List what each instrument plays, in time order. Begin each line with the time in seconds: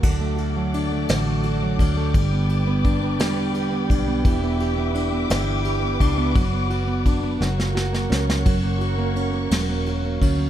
Already playing: steel-string acoustic guitar F#3 A#3
0.03 fingered electric bass D2, steel-string acoustic guitar D3 F#4, string section A4 D5 F#5 D6, kick, crash
0.21 steel-string acoustic guitar A3
0.38 steel-string acoustic guitar F#4, ride
0.56 steel-string acoustic guitar F#3
0.74 steel-string acoustic guitar D4, ride
0.92 steel-string acoustic guitar A3
1.09 fingered electric bass A1, steel-string acoustic guitar D3 F#4, snare, ride
1.27 steel-string acoustic guitar A3
1.43 steel-string acoustic guitar F#4, ride
1.62 steel-string acoustic guitar F#3
1.79 fingered electric bass D2, steel-string acoustic guitar D4, kick, ride
1.97 steel-string acoustic guitar A3
2.14 fingered electric bass G1, steel-string acoustic guitar G3 G4, string section B4 D5 G5, kick, ride
2.33 steel-string acoustic guitar B3
2.49 steel-string acoustic guitar G4, ride
2.67 steel-string acoustic guitar B3
2.85 steel-string acoustic guitar D4, kick, ride
3.03 steel-string acoustic guitar B3
3.19 fingered electric bass E1, steel-string acoustic guitar G3 G4, snare, ride
3.37 steel-string acoustic guitar B3
3.54 steel-string acoustic guitar G4, ride
3.73 steel-string acoustic guitar B3
3.90 fingered electric bass B1, steel-string acoustic guitar D4, kick, ride
4.08 steel-string acoustic guitar B3
4.24 fingered electric bass E1, steel-string acoustic guitar E3 G4, string section B4 E5 D6, kick, ride
4.44 steel-string acoustic guitar B3
4.60 steel-string acoustic guitar G4, ride
4.78 steel-string acoustic guitar B3
4.95 steel-string acoustic guitar D4, ride
5.13 steel-string acoustic guitar B3
5.30 fingered electric bass G1, steel-string acoustic guitar E3 G4, snare, ride
5.48 steel-string acoustic guitar B3
5.65 steel-string acoustic guitar G4, ride
5.83 steel-string acoustic guitar B3
6.00 fingered electric bass C#2, steel-string acoustic guitar D4, kick, ride
6.18 steel-string acoustic guitar B3
6.35 fingered electric bass F#1, steel-string acoustic guitar F#3 F#4, string section D5 F#5, kick, ride
6.53 steel-string acoustic guitar B3
6.70 steel-string acoustic guitar F#4, ride
6.87 steel-string acoustic guitar B3
7.06 steel-string acoustic guitar D4, kick, ride
7.23 steel-string acoustic guitar B3
7.40 fingered electric bass F#1, steel-string acoustic guitar F#3 F#4, string section A#4 C#5 C#6, snare
7.58 steel-string acoustic guitar A#3, snare
7.75 steel-string acoustic guitar F#4, snare
7.93 steel-string acoustic guitar A#3, snare
8.10 fingered electric bass C#2, steel-string acoustic guitar C#4, snare
8.28 steel-string acoustic guitar A#3, snare
8.46 fingered electric bass F#1, steel-string acoustic guitar F#3 F#4, kick, ride
8.63 steel-string acoustic guitar A#3
8.81 steel-string acoustic guitar F#4, ride
8.98 steel-string acoustic guitar A#3
9.16 steel-string acoustic guitar C#4, ride
9.34 steel-string acoustic guitar A#3
9.51 fingered electric bass E1, steel-string acoustic guitar F#3 F#4, snare, ride
9.69 steel-string acoustic guitar A#3
9.86 steel-string acoustic guitar F#4, ride
10.05 steel-string acoustic guitar A#3
10.21 fingered electric bass D2, steel-string acoustic guitar C#4, kick, ride
10.39 steel-string acoustic guitar A#3